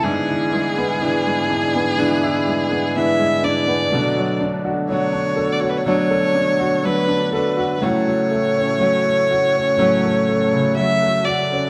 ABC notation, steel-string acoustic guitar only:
X:1
M:4/4
L:1/8
Q:1/4=62
K:Emix
V:1 name="Steel-string acoustic guitar"
[G,B,DE] [B,DE] [G,B,DE]2 [G,B,DE]2 [G,B,DE] [B,DE] | [B,,F,A,DF]2 [F,A,DF]2 [B,,F,A,DF]2 [F,A,DF] [A,DF] | [A,,F,A,CF]2 [F,A,CF]2 [A,,F,A,CF]2 [F,A,CF] [A,F] |]